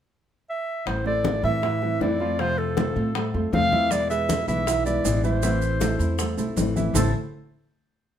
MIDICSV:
0, 0, Header, 1, 7, 480
1, 0, Start_track
1, 0, Key_signature, 0, "minor"
1, 0, Tempo, 379987
1, 1096, Time_signature, 4, 2, 24, 8
1, 10344, End_track
2, 0, Start_track
2, 0, Title_t, "Clarinet"
2, 0, Program_c, 0, 71
2, 627, Note_on_c, 0, 76, 82
2, 1098, Note_on_c, 0, 72, 76
2, 1117, Note_off_c, 0, 76, 0
2, 1338, Note_off_c, 0, 72, 0
2, 1349, Note_on_c, 0, 74, 85
2, 1790, Note_off_c, 0, 74, 0
2, 1827, Note_on_c, 0, 76, 92
2, 2492, Note_off_c, 0, 76, 0
2, 2548, Note_on_c, 0, 74, 82
2, 3027, Note_on_c, 0, 72, 94
2, 3046, Note_off_c, 0, 74, 0
2, 3263, Note_on_c, 0, 69, 78
2, 3282, Note_off_c, 0, 72, 0
2, 4220, Note_off_c, 0, 69, 0
2, 4468, Note_on_c, 0, 77, 103
2, 4945, Note_on_c, 0, 74, 99
2, 4964, Note_off_c, 0, 77, 0
2, 5174, Note_off_c, 0, 74, 0
2, 5182, Note_on_c, 0, 76, 90
2, 5625, Note_off_c, 0, 76, 0
2, 5664, Note_on_c, 0, 76, 89
2, 6106, Note_off_c, 0, 76, 0
2, 6137, Note_on_c, 0, 74, 82
2, 6582, Note_off_c, 0, 74, 0
2, 6621, Note_on_c, 0, 72, 78
2, 8246, Note_off_c, 0, 72, 0
2, 8789, Note_on_c, 0, 69, 72
2, 9005, Note_off_c, 0, 69, 0
2, 10344, End_track
3, 0, Start_track
3, 0, Title_t, "Grand piano"
3, 0, Program_c, 1, 0
3, 1334, Note_on_c, 1, 57, 62
3, 1337, Note_on_c, 1, 69, 60
3, 1341, Note_on_c, 1, 72, 64
3, 1729, Note_off_c, 1, 57, 0
3, 1731, Note_off_c, 1, 69, 0
3, 1733, Note_off_c, 1, 72, 0
3, 1819, Note_on_c, 1, 52, 70
3, 1823, Note_on_c, 1, 64, 68
3, 1826, Note_on_c, 1, 76, 70
3, 2016, Note_off_c, 1, 52, 0
3, 2018, Note_off_c, 1, 64, 0
3, 2019, Note_off_c, 1, 76, 0
3, 2054, Note_on_c, 1, 52, 66
3, 2060, Note_on_c, 1, 64, 66
3, 2060, Note_on_c, 1, 76, 62
3, 2253, Note_off_c, 1, 52, 0
3, 2256, Note_off_c, 1, 64, 0
3, 2256, Note_off_c, 1, 76, 0
3, 2305, Note_on_c, 1, 52, 66
3, 2310, Note_on_c, 1, 64, 58
3, 2313, Note_on_c, 1, 76, 61
3, 2696, Note_off_c, 1, 52, 0
3, 2699, Note_off_c, 1, 64, 0
3, 2700, Note_off_c, 1, 76, 0
3, 2782, Note_on_c, 1, 53, 66
3, 2787, Note_on_c, 1, 65, 73
3, 2791, Note_on_c, 1, 77, 66
3, 2977, Note_off_c, 1, 53, 0
3, 2980, Note_off_c, 1, 65, 0
3, 2983, Note_off_c, 1, 77, 0
3, 3024, Note_on_c, 1, 53, 64
3, 3027, Note_on_c, 1, 65, 72
3, 3033, Note_on_c, 1, 77, 72
3, 3415, Note_off_c, 1, 53, 0
3, 3417, Note_off_c, 1, 65, 0
3, 3420, Note_off_c, 1, 77, 0
3, 3500, Note_on_c, 1, 57, 58
3, 3503, Note_on_c, 1, 69, 55
3, 3507, Note_on_c, 1, 72, 59
3, 3893, Note_off_c, 1, 57, 0
3, 3894, Note_off_c, 1, 69, 0
3, 3896, Note_off_c, 1, 72, 0
3, 3982, Note_on_c, 1, 57, 67
3, 3985, Note_on_c, 1, 69, 57
3, 3988, Note_on_c, 1, 72, 56
3, 4177, Note_off_c, 1, 57, 0
3, 4178, Note_off_c, 1, 69, 0
3, 4180, Note_off_c, 1, 72, 0
3, 4222, Note_on_c, 1, 57, 57
3, 4227, Note_on_c, 1, 69, 56
3, 4229, Note_on_c, 1, 72, 49
3, 4613, Note_off_c, 1, 57, 0
3, 4616, Note_off_c, 1, 69, 0
3, 4617, Note_off_c, 1, 72, 0
3, 4698, Note_on_c, 1, 52, 67
3, 4702, Note_on_c, 1, 64, 69
3, 4708, Note_on_c, 1, 76, 75
3, 5091, Note_off_c, 1, 52, 0
3, 5093, Note_off_c, 1, 64, 0
3, 5096, Note_off_c, 1, 76, 0
3, 5181, Note_on_c, 1, 56, 60
3, 5185, Note_on_c, 1, 68, 61
3, 5189, Note_on_c, 1, 71, 68
3, 5572, Note_off_c, 1, 56, 0
3, 5574, Note_off_c, 1, 68, 0
3, 5577, Note_off_c, 1, 71, 0
3, 5657, Note_on_c, 1, 52, 72
3, 5664, Note_on_c, 1, 64, 72
3, 5666, Note_on_c, 1, 76, 73
3, 5853, Note_off_c, 1, 52, 0
3, 5857, Note_off_c, 1, 64, 0
3, 5858, Note_off_c, 1, 76, 0
3, 5906, Note_on_c, 1, 52, 69
3, 5911, Note_on_c, 1, 64, 72
3, 5914, Note_on_c, 1, 76, 73
3, 6098, Note_off_c, 1, 52, 0
3, 6101, Note_off_c, 1, 64, 0
3, 6103, Note_off_c, 1, 76, 0
3, 6142, Note_on_c, 1, 52, 58
3, 6142, Note_on_c, 1, 64, 64
3, 6150, Note_on_c, 1, 76, 64
3, 6532, Note_off_c, 1, 52, 0
3, 6532, Note_off_c, 1, 64, 0
3, 6537, Note_off_c, 1, 76, 0
3, 6617, Note_on_c, 1, 52, 72
3, 6621, Note_on_c, 1, 64, 70
3, 6628, Note_on_c, 1, 76, 68
3, 6813, Note_off_c, 1, 52, 0
3, 6815, Note_off_c, 1, 64, 0
3, 6819, Note_off_c, 1, 76, 0
3, 6856, Note_on_c, 1, 52, 78
3, 6862, Note_on_c, 1, 64, 70
3, 6865, Note_on_c, 1, 76, 70
3, 7248, Note_off_c, 1, 52, 0
3, 7252, Note_off_c, 1, 64, 0
3, 7253, Note_off_c, 1, 76, 0
3, 7342, Note_on_c, 1, 57, 58
3, 7344, Note_on_c, 1, 69, 59
3, 7351, Note_on_c, 1, 72, 62
3, 7732, Note_off_c, 1, 57, 0
3, 7733, Note_off_c, 1, 69, 0
3, 7737, Note_off_c, 1, 72, 0
3, 7819, Note_on_c, 1, 57, 56
3, 7822, Note_on_c, 1, 69, 57
3, 7825, Note_on_c, 1, 72, 57
3, 8013, Note_off_c, 1, 57, 0
3, 8015, Note_off_c, 1, 69, 0
3, 8017, Note_off_c, 1, 72, 0
3, 8052, Note_on_c, 1, 57, 58
3, 8054, Note_on_c, 1, 69, 51
3, 8060, Note_on_c, 1, 72, 52
3, 8446, Note_off_c, 1, 57, 0
3, 8447, Note_off_c, 1, 69, 0
3, 8450, Note_off_c, 1, 72, 0
3, 8536, Note_on_c, 1, 52, 68
3, 8543, Note_on_c, 1, 64, 67
3, 8547, Note_on_c, 1, 76, 68
3, 8731, Note_off_c, 1, 52, 0
3, 8735, Note_off_c, 1, 64, 0
3, 8738, Note_off_c, 1, 76, 0
3, 8768, Note_on_c, 1, 57, 75
3, 8771, Note_on_c, 1, 64, 72
3, 8774, Note_on_c, 1, 69, 76
3, 8777, Note_on_c, 1, 76, 73
3, 8778, Note_on_c, 1, 72, 75
3, 8780, Note_on_c, 1, 81, 81
3, 8993, Note_off_c, 1, 57, 0
3, 8995, Note_off_c, 1, 64, 0
3, 8997, Note_off_c, 1, 69, 0
3, 8998, Note_off_c, 1, 76, 0
3, 8999, Note_off_c, 1, 72, 0
3, 9000, Note_off_c, 1, 81, 0
3, 10344, End_track
4, 0, Start_track
4, 0, Title_t, "Nylon-string guitar"
4, 0, Program_c, 2, 24
4, 1080, Note_on_c, 2, 52, 61
4, 1089, Note_on_c, 2, 57, 57
4, 1095, Note_on_c, 2, 60, 57
4, 1103, Note_on_c, 2, 64, 54
4, 1788, Note_off_c, 2, 64, 0
4, 1800, Note_off_c, 2, 52, 0
4, 1804, Note_on_c, 2, 64, 54
4, 1807, Note_off_c, 2, 60, 0
4, 1812, Note_on_c, 2, 60, 44
4, 1818, Note_off_c, 2, 57, 0
4, 1823, Note_on_c, 2, 57, 39
4, 2041, Note_off_c, 2, 64, 0
4, 2046, Note_off_c, 2, 60, 0
4, 2051, Note_off_c, 2, 57, 0
4, 2296, Note_on_c, 2, 64, 36
4, 2311, Note_on_c, 2, 60, 35
4, 2317, Note_on_c, 2, 57, 31
4, 2527, Note_off_c, 2, 64, 0
4, 2528, Note_off_c, 2, 57, 0
4, 2529, Note_on_c, 2, 52, 62
4, 2535, Note_off_c, 2, 60, 0
4, 2543, Note_on_c, 2, 57, 68
4, 2548, Note_on_c, 2, 60, 65
4, 2555, Note_on_c, 2, 64, 75
4, 2764, Note_off_c, 2, 52, 0
4, 2765, Note_off_c, 2, 64, 0
4, 2771, Note_off_c, 2, 57, 0
4, 2773, Note_off_c, 2, 60, 0
4, 2781, Note_on_c, 2, 64, 45
4, 2791, Note_on_c, 2, 60, 38
4, 2803, Note_on_c, 2, 57, 35
4, 3010, Note_off_c, 2, 64, 0
4, 3015, Note_off_c, 2, 60, 0
4, 3017, Note_off_c, 2, 57, 0
4, 3018, Note_on_c, 2, 48, 60
4, 3026, Note_on_c, 2, 53, 58
4, 3032, Note_on_c, 2, 57, 60
4, 3038, Note_on_c, 2, 65, 61
4, 3040, Note_on_c, 2, 60, 61
4, 3723, Note_off_c, 2, 65, 0
4, 3728, Note_off_c, 2, 48, 0
4, 3732, Note_off_c, 2, 53, 0
4, 3732, Note_off_c, 2, 60, 0
4, 3735, Note_off_c, 2, 57, 0
4, 3738, Note_on_c, 2, 65, 48
4, 3747, Note_on_c, 2, 60, 48
4, 3762, Note_on_c, 2, 57, 33
4, 3967, Note_off_c, 2, 57, 0
4, 3968, Note_off_c, 2, 65, 0
4, 3973, Note_off_c, 2, 60, 0
4, 4218, Note_on_c, 2, 65, 39
4, 4228, Note_on_c, 2, 60, 39
4, 4238, Note_on_c, 2, 57, 37
4, 4446, Note_off_c, 2, 57, 0
4, 4447, Note_off_c, 2, 60, 0
4, 4448, Note_off_c, 2, 65, 0
4, 4449, Note_on_c, 2, 48, 65
4, 4453, Note_on_c, 2, 53, 66
4, 4461, Note_on_c, 2, 57, 75
4, 4462, Note_on_c, 2, 60, 77
4, 4467, Note_on_c, 2, 65, 67
4, 4673, Note_off_c, 2, 65, 0
4, 4683, Note_off_c, 2, 48, 0
4, 4685, Note_off_c, 2, 53, 0
4, 4688, Note_on_c, 2, 65, 48
4, 4689, Note_off_c, 2, 57, 0
4, 4690, Note_off_c, 2, 60, 0
4, 4706, Note_on_c, 2, 60, 42
4, 4713, Note_on_c, 2, 57, 36
4, 4922, Note_off_c, 2, 65, 0
4, 4931, Note_off_c, 2, 60, 0
4, 4935, Note_off_c, 2, 57, 0
4, 4935, Note_on_c, 2, 47, 58
4, 4935, Note_on_c, 2, 52, 64
4, 4944, Note_on_c, 2, 56, 60
4, 4951, Note_on_c, 2, 64, 65
4, 4952, Note_on_c, 2, 59, 66
4, 5645, Note_off_c, 2, 47, 0
4, 5650, Note_off_c, 2, 56, 0
4, 5650, Note_off_c, 2, 64, 0
4, 5654, Note_off_c, 2, 59, 0
4, 5655, Note_on_c, 2, 64, 42
4, 5667, Note_on_c, 2, 59, 46
4, 5674, Note_on_c, 2, 56, 37
4, 5885, Note_off_c, 2, 56, 0
4, 5885, Note_off_c, 2, 64, 0
4, 5891, Note_off_c, 2, 59, 0
4, 5893, Note_off_c, 2, 52, 0
4, 6128, Note_on_c, 2, 64, 42
4, 6139, Note_on_c, 2, 59, 39
4, 6149, Note_on_c, 2, 56, 34
4, 6361, Note_off_c, 2, 64, 0
4, 6366, Note_off_c, 2, 56, 0
4, 6366, Note_on_c, 2, 47, 69
4, 6367, Note_off_c, 2, 59, 0
4, 6374, Note_on_c, 2, 52, 66
4, 6381, Note_on_c, 2, 56, 73
4, 6384, Note_on_c, 2, 59, 76
4, 6392, Note_on_c, 2, 64, 80
4, 6600, Note_off_c, 2, 47, 0
4, 6604, Note_off_c, 2, 52, 0
4, 6607, Note_off_c, 2, 64, 0
4, 6608, Note_off_c, 2, 56, 0
4, 6609, Note_off_c, 2, 59, 0
4, 6622, Note_on_c, 2, 64, 44
4, 6629, Note_on_c, 2, 59, 40
4, 6636, Note_on_c, 2, 56, 36
4, 6848, Note_off_c, 2, 64, 0
4, 6852, Note_off_c, 2, 59, 0
4, 6855, Note_off_c, 2, 56, 0
4, 6856, Note_on_c, 2, 52, 59
4, 6865, Note_on_c, 2, 57, 67
4, 6868, Note_on_c, 2, 60, 64
4, 6880, Note_on_c, 2, 64, 65
4, 7565, Note_off_c, 2, 52, 0
4, 7569, Note_off_c, 2, 57, 0
4, 7570, Note_off_c, 2, 60, 0
4, 7573, Note_off_c, 2, 64, 0
4, 7588, Note_on_c, 2, 64, 49
4, 7598, Note_on_c, 2, 60, 43
4, 7609, Note_on_c, 2, 57, 38
4, 7811, Note_off_c, 2, 64, 0
4, 7816, Note_off_c, 2, 60, 0
4, 7821, Note_off_c, 2, 57, 0
4, 8069, Note_on_c, 2, 64, 37
4, 8080, Note_on_c, 2, 60, 34
4, 8090, Note_on_c, 2, 57, 31
4, 8291, Note_off_c, 2, 64, 0
4, 8297, Note_off_c, 2, 57, 0
4, 8297, Note_off_c, 2, 60, 0
4, 8300, Note_on_c, 2, 52, 62
4, 8312, Note_on_c, 2, 57, 61
4, 8316, Note_on_c, 2, 60, 67
4, 8323, Note_on_c, 2, 64, 63
4, 8527, Note_off_c, 2, 52, 0
4, 8529, Note_off_c, 2, 64, 0
4, 8532, Note_off_c, 2, 57, 0
4, 8535, Note_off_c, 2, 60, 0
4, 8544, Note_on_c, 2, 64, 43
4, 8554, Note_on_c, 2, 60, 40
4, 8561, Note_on_c, 2, 57, 37
4, 8769, Note_off_c, 2, 64, 0
4, 8774, Note_off_c, 2, 60, 0
4, 8777, Note_off_c, 2, 57, 0
4, 8784, Note_on_c, 2, 45, 63
4, 8792, Note_on_c, 2, 52, 69
4, 8792, Note_on_c, 2, 57, 65
4, 8803, Note_on_c, 2, 64, 72
4, 8804, Note_on_c, 2, 60, 64
4, 8970, Note_off_c, 2, 45, 0
4, 8974, Note_off_c, 2, 52, 0
4, 8974, Note_off_c, 2, 57, 0
4, 8980, Note_off_c, 2, 60, 0
4, 8980, Note_off_c, 2, 64, 0
4, 10344, End_track
5, 0, Start_track
5, 0, Title_t, "Upright bass"
5, 0, Program_c, 3, 32
5, 1092, Note_on_c, 3, 33, 80
5, 1765, Note_off_c, 3, 33, 0
5, 1812, Note_on_c, 3, 45, 85
5, 2485, Note_off_c, 3, 45, 0
5, 2533, Note_on_c, 3, 41, 74
5, 3661, Note_off_c, 3, 41, 0
5, 3738, Note_on_c, 3, 45, 81
5, 4184, Note_off_c, 3, 45, 0
5, 4222, Note_on_c, 3, 41, 70
5, 4443, Note_off_c, 3, 41, 0
5, 4455, Note_on_c, 3, 40, 82
5, 5580, Note_off_c, 3, 40, 0
5, 5655, Note_on_c, 3, 35, 83
5, 6324, Note_off_c, 3, 35, 0
5, 6378, Note_on_c, 3, 33, 80
5, 7500, Note_off_c, 3, 33, 0
5, 7570, Note_on_c, 3, 40, 84
5, 8017, Note_off_c, 3, 40, 0
5, 8053, Note_on_c, 3, 35, 55
5, 8276, Note_off_c, 3, 35, 0
5, 8291, Note_on_c, 3, 33, 80
5, 8716, Note_off_c, 3, 33, 0
5, 8761, Note_on_c, 3, 33, 80
5, 8990, Note_off_c, 3, 33, 0
5, 10344, End_track
6, 0, Start_track
6, 0, Title_t, "Muted nylon-string guitar strokes"
6, 2062, Note_on_c, 9, 29, 49
6, 2188, Note_off_c, 9, 29, 0
6, 3980, Note_on_c, 9, 29, 49
6, 4106, Note_off_c, 9, 29, 0
6, 5893, Note_on_c, 9, 29, 49
6, 6019, Note_off_c, 9, 29, 0
6, 7834, Note_on_c, 9, 29, 54
6, 7960, Note_off_c, 9, 29, 0
6, 10344, End_track
7, 0, Start_track
7, 0, Title_t, "Drums"
7, 1097, Note_on_c, 9, 60, 59
7, 1100, Note_on_c, 9, 63, 32
7, 1223, Note_off_c, 9, 60, 0
7, 1226, Note_off_c, 9, 63, 0
7, 1335, Note_on_c, 9, 60, 30
7, 1335, Note_on_c, 9, 63, 25
7, 1461, Note_off_c, 9, 63, 0
7, 1462, Note_off_c, 9, 60, 0
7, 1572, Note_on_c, 9, 63, 83
7, 1579, Note_on_c, 9, 60, 58
7, 1699, Note_off_c, 9, 63, 0
7, 1705, Note_off_c, 9, 60, 0
7, 1810, Note_on_c, 9, 63, 35
7, 1818, Note_on_c, 9, 60, 29
7, 1937, Note_off_c, 9, 63, 0
7, 1944, Note_off_c, 9, 60, 0
7, 2051, Note_on_c, 9, 63, 30
7, 2062, Note_on_c, 9, 60, 53
7, 2177, Note_off_c, 9, 63, 0
7, 2188, Note_off_c, 9, 60, 0
7, 2296, Note_on_c, 9, 63, 26
7, 2298, Note_on_c, 9, 60, 30
7, 2422, Note_off_c, 9, 63, 0
7, 2425, Note_off_c, 9, 60, 0
7, 2539, Note_on_c, 9, 63, 31
7, 2542, Note_on_c, 9, 60, 30
7, 2542, Note_on_c, 9, 61, 73
7, 2666, Note_off_c, 9, 63, 0
7, 2668, Note_off_c, 9, 60, 0
7, 2668, Note_off_c, 9, 61, 0
7, 2779, Note_on_c, 9, 63, 27
7, 2905, Note_off_c, 9, 63, 0
7, 3021, Note_on_c, 9, 60, 58
7, 3023, Note_on_c, 9, 63, 27
7, 3147, Note_off_c, 9, 60, 0
7, 3150, Note_off_c, 9, 63, 0
7, 3262, Note_on_c, 9, 60, 28
7, 3270, Note_on_c, 9, 63, 28
7, 3389, Note_off_c, 9, 60, 0
7, 3396, Note_off_c, 9, 63, 0
7, 3498, Note_on_c, 9, 60, 53
7, 3506, Note_on_c, 9, 63, 85
7, 3624, Note_off_c, 9, 60, 0
7, 3632, Note_off_c, 9, 63, 0
7, 3743, Note_on_c, 9, 60, 27
7, 3748, Note_on_c, 9, 63, 34
7, 3869, Note_off_c, 9, 60, 0
7, 3875, Note_off_c, 9, 63, 0
7, 3982, Note_on_c, 9, 60, 65
7, 3989, Note_on_c, 9, 63, 31
7, 4108, Note_off_c, 9, 60, 0
7, 4116, Note_off_c, 9, 63, 0
7, 4225, Note_on_c, 9, 63, 29
7, 4226, Note_on_c, 9, 60, 27
7, 4351, Note_off_c, 9, 63, 0
7, 4353, Note_off_c, 9, 60, 0
7, 4463, Note_on_c, 9, 60, 31
7, 4463, Note_on_c, 9, 61, 78
7, 4469, Note_on_c, 9, 63, 78
7, 4589, Note_off_c, 9, 60, 0
7, 4589, Note_off_c, 9, 61, 0
7, 4595, Note_off_c, 9, 63, 0
7, 4704, Note_on_c, 9, 63, 64
7, 4831, Note_off_c, 9, 63, 0
7, 4936, Note_on_c, 9, 60, 53
7, 4944, Note_on_c, 9, 70, 56
7, 4945, Note_on_c, 9, 63, 30
7, 5063, Note_off_c, 9, 60, 0
7, 5071, Note_off_c, 9, 70, 0
7, 5072, Note_off_c, 9, 63, 0
7, 5178, Note_on_c, 9, 60, 31
7, 5186, Note_on_c, 9, 70, 26
7, 5188, Note_on_c, 9, 63, 26
7, 5305, Note_off_c, 9, 60, 0
7, 5313, Note_off_c, 9, 70, 0
7, 5314, Note_off_c, 9, 63, 0
7, 5420, Note_on_c, 9, 60, 51
7, 5424, Note_on_c, 9, 70, 64
7, 5426, Note_on_c, 9, 63, 92
7, 5546, Note_off_c, 9, 60, 0
7, 5550, Note_off_c, 9, 70, 0
7, 5552, Note_off_c, 9, 63, 0
7, 5661, Note_on_c, 9, 60, 31
7, 5663, Note_on_c, 9, 70, 28
7, 5668, Note_on_c, 9, 63, 32
7, 5787, Note_off_c, 9, 60, 0
7, 5789, Note_off_c, 9, 70, 0
7, 5794, Note_off_c, 9, 63, 0
7, 5902, Note_on_c, 9, 60, 58
7, 5908, Note_on_c, 9, 63, 31
7, 5908, Note_on_c, 9, 70, 66
7, 6028, Note_off_c, 9, 60, 0
7, 6034, Note_off_c, 9, 63, 0
7, 6034, Note_off_c, 9, 70, 0
7, 6141, Note_on_c, 9, 70, 27
7, 6142, Note_on_c, 9, 60, 31
7, 6148, Note_on_c, 9, 63, 31
7, 6267, Note_off_c, 9, 70, 0
7, 6268, Note_off_c, 9, 60, 0
7, 6274, Note_off_c, 9, 63, 0
7, 6380, Note_on_c, 9, 60, 34
7, 6380, Note_on_c, 9, 61, 74
7, 6381, Note_on_c, 9, 70, 65
7, 6388, Note_on_c, 9, 63, 31
7, 6506, Note_off_c, 9, 60, 0
7, 6506, Note_off_c, 9, 61, 0
7, 6508, Note_off_c, 9, 70, 0
7, 6514, Note_off_c, 9, 63, 0
7, 6619, Note_on_c, 9, 70, 26
7, 6628, Note_on_c, 9, 63, 28
7, 6745, Note_off_c, 9, 70, 0
7, 6754, Note_off_c, 9, 63, 0
7, 6853, Note_on_c, 9, 70, 64
7, 6861, Note_on_c, 9, 60, 52
7, 6872, Note_on_c, 9, 63, 33
7, 6979, Note_off_c, 9, 70, 0
7, 6987, Note_off_c, 9, 60, 0
7, 6998, Note_off_c, 9, 63, 0
7, 7096, Note_on_c, 9, 70, 28
7, 7099, Note_on_c, 9, 60, 28
7, 7104, Note_on_c, 9, 63, 27
7, 7222, Note_off_c, 9, 70, 0
7, 7225, Note_off_c, 9, 60, 0
7, 7231, Note_off_c, 9, 63, 0
7, 7337, Note_on_c, 9, 70, 59
7, 7339, Note_on_c, 9, 60, 60
7, 7345, Note_on_c, 9, 63, 84
7, 7463, Note_off_c, 9, 70, 0
7, 7465, Note_off_c, 9, 60, 0
7, 7471, Note_off_c, 9, 63, 0
7, 7578, Note_on_c, 9, 60, 29
7, 7581, Note_on_c, 9, 70, 28
7, 7588, Note_on_c, 9, 63, 34
7, 7705, Note_off_c, 9, 60, 0
7, 7707, Note_off_c, 9, 70, 0
7, 7714, Note_off_c, 9, 63, 0
7, 7815, Note_on_c, 9, 60, 59
7, 7816, Note_on_c, 9, 70, 60
7, 7824, Note_on_c, 9, 63, 33
7, 7942, Note_off_c, 9, 60, 0
7, 7943, Note_off_c, 9, 70, 0
7, 7951, Note_off_c, 9, 63, 0
7, 8056, Note_on_c, 9, 60, 28
7, 8060, Note_on_c, 9, 70, 28
7, 8068, Note_on_c, 9, 63, 29
7, 8183, Note_off_c, 9, 60, 0
7, 8186, Note_off_c, 9, 70, 0
7, 8194, Note_off_c, 9, 63, 0
7, 8302, Note_on_c, 9, 60, 30
7, 8302, Note_on_c, 9, 61, 78
7, 8302, Note_on_c, 9, 70, 54
7, 8309, Note_on_c, 9, 63, 74
7, 8428, Note_off_c, 9, 60, 0
7, 8428, Note_off_c, 9, 61, 0
7, 8428, Note_off_c, 9, 70, 0
7, 8436, Note_off_c, 9, 63, 0
7, 8548, Note_on_c, 9, 63, 67
7, 8548, Note_on_c, 9, 70, 27
7, 8674, Note_off_c, 9, 63, 0
7, 8674, Note_off_c, 9, 70, 0
7, 8779, Note_on_c, 9, 61, 86
7, 8783, Note_on_c, 9, 70, 92
7, 8787, Note_on_c, 9, 64, 86
7, 8906, Note_off_c, 9, 61, 0
7, 8909, Note_off_c, 9, 70, 0
7, 8914, Note_off_c, 9, 64, 0
7, 10344, End_track
0, 0, End_of_file